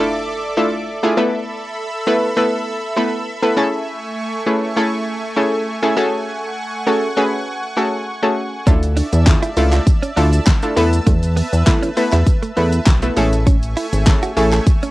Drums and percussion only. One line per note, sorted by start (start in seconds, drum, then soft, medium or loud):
8.67 kick loud
8.67 closed hi-hat medium
8.67 shaker medium
8.83 closed hi-hat soft
8.83 shaker soft
8.97 open hi-hat medium
8.97 shaker medium
9.13 closed hi-hat medium
9.13 shaker medium
9.26 kick loud
9.26 snare medium
9.26 clap medium
9.26 clap loud
9.26 closed hi-hat medium
9.26 shaker medium
9.43 closed hi-hat medium
9.43 shaker medium
9.57 open hi-hat medium
9.57 shaker medium
9.73 clap medium
9.73 closed hi-hat medium
9.73 shaker medium
9.87 kick loud
9.87 closed hi-hat medium
9.87 shaker medium
10.03 closed hi-hat soft
10.03 shaker medium
10.17 open hi-hat medium
10.17 shaker medium
10.33 closed hi-hat medium
10.33 shaker medium
10.47 kick loud
10.47 snare medium
10.47 clap medium
10.47 clap loud
10.47 closed hi-hat medium
10.47 shaker medium
10.62 closed hi-hat soft
10.62 shaker soft
10.77 open hi-hat medium
10.77 shaker medium
10.93 closed hi-hat medium
10.93 shaker medium
11.07 kick loud
11.07 closed hi-hat medium
11.07 shaker medium
11.23 closed hi-hat soft
11.23 shaker soft
11.37 open hi-hat medium
11.37 shaker medium
11.53 closed hi-hat medium
11.53 shaker medium
11.67 kick loud
11.67 snare medium
11.67 clap medium
11.67 clap loud
11.67 closed hi-hat medium
11.67 shaker medium
11.83 closed hi-hat medium
11.83 shaker medium
11.97 open hi-hat medium
11.97 shaker medium
12.13 clap medium
12.13 closed hi-hat medium
12.13 shaker medium
12.27 kick loud
12.27 closed hi-hat medium
12.27 shaker medium
12.43 closed hi-hat medium
12.43 shaker medium
12.57 open hi-hat medium
12.57 shaker medium
12.72 closed hi-hat medium
12.72 shaker medium
12.87 kick loud
12.87 snare medium
12.87 clap loud
12.87 clap medium
12.87 closed hi-hat medium
12.87 shaker medium
13.02 closed hi-hat soft
13.02 shaker soft
13.17 open hi-hat medium
13.17 shaker medium
13.33 closed hi-hat medium
13.33 shaker medium
13.47 kick loud
13.47 closed hi-hat medium
13.47 shaker medium
13.63 closed hi-hat medium
13.63 shaker medium
13.77 open hi-hat medium
13.77 shaker medium
13.93 closed hi-hat medium
13.93 shaker medium
14.07 kick loud
14.07 snare medium
14.07 clap medium
14.07 clap loud
14.07 closed hi-hat medium
14.07 shaker medium
14.23 closed hi-hat medium
14.23 shaker medium
14.37 open hi-hat medium
14.37 shaker medium
14.53 clap medium
14.53 closed hi-hat medium
14.53 shaker medium
14.67 kick loud
14.67 closed hi-hat medium
14.67 shaker medium
14.83 closed hi-hat medium
14.83 shaker medium